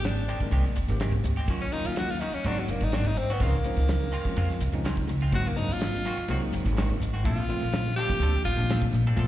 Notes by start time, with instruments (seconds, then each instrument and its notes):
Already playing: upright bass G#1, tine electric piano D#3 G#3 A#3 C4 G#4
0.04 tenor saxophone D4, muted clean electric guitar stroke, snare, ride
0.18 snare
0.28 clean electric guitar D#3 G#3 C4 G4, hi-hat pedal, ride
0.40 tine electric piano D#3 G#3 A#3 C4 A#4, muted upright bass stroke, muted clean electric guitar stroke, kick, ride
0.51 upright bass C2, clean electric guitar D#3 G#3 C4 G4, ride
0.66 snare
0.75 upright bass G1, muted clean electric guitar stroke, hi-hat pedal, ride
0.88 upright bass G#1, tine electric piano D#3 G#3 A#3 C4 G4, muted clean electric guitar stroke, snare, ride
1.00 clean electric guitar D#3 G#3 C4 G4, snare, ride
1.12 muted clean electric guitar stroke, kick
1.24 upright bass D2, muted clean electric guitar stroke, hi-hat pedal, ride
1.36 clean electric guitar G#3 C4 G4, ride
1.47 upright bass D#2, tine electric piano D#3 F#3 A#3 C#4 F4, clean electric guitar D#3 A#3 C#4 F#4, kick, ride
1.62 tenor saxophone C#4
1.72 tine electric piano D#3 F#3 A#3 C#4 F4, tenor saxophone D#4, muted upright bass stroke, muted clean electric guitar stroke, hi-hat pedal, ride
1.84 upright bass D#2, tenor saxophone F4, ride
1.96 tenor saxophone F#4, muted clean electric guitar stroke, snare, ride
2.10 tenor saxophone F4, snare
2.21 clean electric guitar D#3 A#3 C#4 F#4, tenor saxophone D#4, hi-hat pedal, ride
2.32 tenor saxophone C#4, muted upright bass stroke, muted clean electric guitar stroke, ride
2.44 upright bass G#1, clean electric guitar D#3 A#3 C4 F#4, tine electric piano F#3 G#3 A#3 C4 D#4, tenor saxophone D4, ride
2.60 tenor saxophone F#3
2.68 upright bass F#1, tenor saxophone A#3, muted clean electric guitar stroke, hi-hat pedal, ride
2.81 upright bass G#1, tenor saxophone D#4, muted clean electric guitar stroke, snare, ride
2.92 clean electric guitar D#3 A#3 C4 F#4, tenor saxophone D4, snare, ride
3.05 tenor saxophone D#4, muted clean electric guitar stroke, kick
3.15 upright bass G#2, tenor saxophone C4, muted clean electric guitar stroke, hi-hat pedal, ride
3.30 clean electric guitar A#3 C4 F#4, tenor saxophone B3
3.40 upright bass C#2, clean electric guitar D#3 G#3 C4 F4, tine electric piano F3 G#3 C4 C#4 D#4, kick, ride
3.44 tenor saxophone A#3
3.64 tine electric piano F3 G#3 C4 C#4 D#4, muted upright bass stroke, muted clean electric guitar stroke, hi-hat pedal, ride
3.76 upright bass C#2, snare, ride
3.88 muted clean electric guitar stroke, snare, ride
4.02 snare
4.12 clean electric guitar D#3 G#3 C4 F4, hi-hat pedal, ride
4.25 tine electric piano F3 G#3 C4 C#4 F4, muted clean electric guitar stroke, kick, snare, ride
4.36 upright bass F2, clean electric guitar D#3 G#3 C4 F4, ride
4.50 muted clean electric guitar stroke, snare
4.60 upright bass C2, muted clean electric guitar stroke, hi-hat pedal, ride
4.72 upright bass C#2, tine electric piano F3 G#3 C4 C#4 D#4, muted clean electric guitar stroke, ride
4.85 clean electric guitar D#3 G#3 C4 F4, snare, ride
4.97 muted clean electric guitar stroke, kick
5.07 upright bass C#2, muted clean electric guitar stroke, hi-hat pedal, ride
5.21 clean electric guitar G#3 C4 F4, ride
5.32 upright bass G#1, clean electric guitar D#3 A#3 C4 F#4, tine electric piano F#3 G#3 A#3 C4 D#4, tenor saxophone F#4, kick, ride
5.48 tenor saxophone A#3
5.56 tine electric piano F#3 G#3 A#3 C4 D4, tenor saxophone D#4, muted upright bass stroke, muted clean electric guitar stroke, hi-hat pedal, ride
5.69 upright bass G#1, ride
5.73 tenor saxophone F4
5.81 muted clean electric guitar stroke, snare, ride
5.94 snare
6.05 clean electric guitar D#3 A#3 C4 F#4, hi-hat pedal, ride
6.17 muted upright bass stroke, muted clean electric guitar stroke, snare, ride
6.28 upright bass C2, clean electric guitar D#3 A#3 C4 F#4, tine electric piano F#3 G#3 A#3 C4 D#4, ride
6.52 upright bass F#1, muted clean electric guitar stroke, hi-hat pedal, ride
6.64 upright bass G#1, muted clean electric guitar stroke, snare, ride
6.77 clean electric guitar D#3 A#3 C4 F#4, snare, ride
6.90 muted clean electric guitar stroke, kick
7.00 upright bass G#1, muted clean electric guitar stroke, hi-hat pedal, ride
7.14 clean electric guitar A#3 C4 F#4
7.23 upright bass A#1, tine electric piano F3 A3 A#3 C4 D4, clean electric guitar F3 C4 D4 A4, tenor saxophone F4, kick, ride
7.48 tine electric piano F3 A3 A#3 C4 F4, muted upright bass stroke, muted clean electric guitar stroke, hi-hat pedal, ride
7.60 upright bass A#1, snare, ride
7.72 muted clean electric guitar stroke, snare, ride
7.87 snare
7.96 clean electric guitar F3 C4 D4 A4, tenor saxophone G4, hi-hat pedal, ride
8.07 tine electric piano F3 A3 A#3 C4 D4, muted upright bass stroke, kick, snare, ride
8.20 upright bass D2, clean electric guitar F3 C4 D4 A4, ride
8.36 muted clean electric guitar stroke
8.45 upright bass A1, tenor saxophone F4, muted clean electric guitar stroke, hi-hat pedal, ride
8.56 upright bass A#1, tine electric piano F3 A3 A#3 C4 D4, muted clean electric guitar stroke, snare, ride
8.69 clean electric guitar F3 C4 D4 A4, snare, ride
8.82 muted clean electric guitar stroke, kick
8.93 upright bass A#1, muted clean electric guitar stroke, hi-hat pedal, ride
9.07 clean electric guitar C4 D4 A4, ride
9.16 upright bass A#1, tine electric piano F3 A3 A#3 C4 F4, clean electric guitar F3 C4 D4 A4, kick, ride